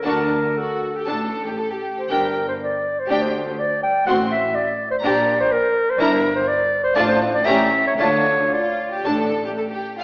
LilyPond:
<<
  \new Staff \with { instrumentName = "Violin section" } { \time 4/4 \key g \minor \tempo 4 = 120 a''8 r4. a''8 r4. | g''8 r4. g''8 r4. | c'''8 r4. bes''8 r4. | \key d \minor bes''8 r4. a''8 r8 bes''8 r8 |
a''8 r4. a''8 r4 r16 f''16 | }
  \new Staff \with { instrumentName = "Clarinet" } { \time 4/4 \key g \minor bes'4 a'2~ a'8 r16 c''16 | bes'8. c''16 d''8. c''16 d''16 c''8. d''8 g''8 | fis''8 e''8 d''8. c''16 d''8. c''16 bes'8. c''16 | \key d \minor bes'8. c''16 d''8. c''16 d''16 c''8 d''16 e''8. cis''16 |
cis''4 d''2 r4 | }
  \new Staff \with { instrumentName = "Violin section" } { \time 4/4 \key g \minor fis'8 r8 fis'8. g'16 a'8. g'16 a'16 g'8. | g'8 r4. g'8 r4. | fis'8 r4. g'8 r4. | \key d \minor e'8 r4. f'8 r8 g'8 r8 |
f'8 r8 f'8. g'16 a'8. g'16 a'16 g'8 f'16 | }
  \new Staff \with { instrumentName = "Viola section" } { \time 4/4 \key g \minor d'8 r4. d'8 r4. | d'8 r4. d'8 r4. | c'8 r4. d'8 r4. | \key d \minor d'8 r4. d'8 r8 cis'8 r8 |
d'8 r4. d'8 r4. | }
  \new Staff \with { instrumentName = "Cello section" } { \clef bass \time 4/4 \key g \minor d4 r4 a,4 r4 | g,4 r4 d,4 r4 | a,4 r4 bes,4 r4 | \key d \minor g,4 r4 a,4 a,4 |
d4 r4 a,4 r4 | }
  \new Staff \with { instrumentName = "Double bass section" } { \clef bass \time 4/4 \key g \minor d,4 r4 a,,4 r4 | g,,4 r4 d,4 r4 | a,,4 r4 bes,,4 r4 | \key d \minor g,,4 r4 a,,4 a,,4 |
d,4 r4 a,,4 r4 | }
>>